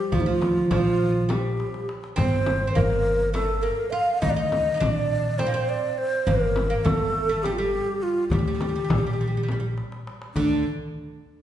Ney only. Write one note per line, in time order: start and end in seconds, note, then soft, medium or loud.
0.00 0.16 G4 medium
0.15 0.22 F4 medium
0.20 0.30 D#4 medium
0.29 0.72 F4 medium
0.74 1.33 F4 medium
1.31 1.89 G4 medium
2.18 2.72 C5 medium
2.74 3.30 A#4 medium
3.33 3.63 A4 medium
3.62 3.92 A#4 medium
3.90 4.20 F5 medium
4.21 4.31 D#5 medium
4.30 4.36 D5 medium
4.35 4.82 D#5 medium
4.81 5.40 D5 loud
5.39 5.71 C5 medium
5.69 5.99 D5 medium
5.98 6.29 C5 medium
6.27 6.86 A#4 medium
6.85 7.44 A4 medium
7.43 7.54 G4 medium
7.53 7.60 F4 medium
7.59 8.04 G4 medium
8.03 8.28 F4 medium
8.29 9.72 G4 medium
10.34 10.62 D4 medium